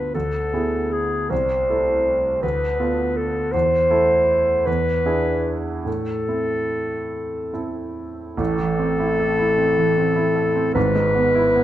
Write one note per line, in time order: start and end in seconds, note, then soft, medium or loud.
0.00 0.15 D2 soft
0.00 0.11 B3 soft
0.00 0.11 D4 soft
0.00 0.11 F4 soft
0.00 0.11 B4 medium
0.14 0.53 D2 soft
0.14 0.93 A4 soft
0.53 1.27 B3 soft
0.53 1.27 E4 soft
0.53 1.27 G#4 soft
0.92 1.31 G#4 soft
1.30 1.67 C2 soft
1.30 2.42 C5 medium
1.69 2.39 A3 soft
1.69 2.40 E4 soft
1.69 2.40 A4 soft
2.42 2.78 D2 soft
2.42 3.18 B4 medium
2.79 3.50 B3 soft
2.79 3.50 F4 soft
2.79 3.50 A4 soft
3.17 3.54 A4 medium
3.52 3.90 E2 soft
3.52 4.67 C5 medium
3.90 4.63 A3 soft
3.90 4.63 E4 soft
3.90 4.63 A4 soft
4.66 5.05 E2 soft
4.66 5.57 B4 medium
5.05 5.82 D4 soft
5.05 5.82 E4 soft
5.05 5.83 G#4 soft
5.85 6.26 A2 soft
5.85 7.93 A4 medium
6.28 7.50 C4 soft
6.28 7.50 E4 soft
6.28 7.51 A4 soft
7.53 8.34 C4 soft
7.53 8.34 E4 soft
7.53 8.35 A4 soft
8.37 10.71 A1 soft
8.37 10.71 A2 soft
8.37 10.72 A4 medium
8.59 8.92 E3 soft
8.79 9.12 C4 soft
9.00 9.32 E4 soft
9.20 9.51 A4 soft
9.39 9.70 E4 soft
9.58 9.90 C4 soft
9.78 10.09 E3 soft
9.97 10.28 C4 soft
10.16 10.48 E4 soft
10.36 10.67 A4 soft
10.56 10.75 C4 soft
10.75 11.64 G#1 medium
10.75 11.64 G#2 medium
10.75 11.64 B4 medium
10.95 11.27 G#3 soft
11.15 11.47 B3 soft
11.35 11.64 E4 soft
11.56 11.64 B3 soft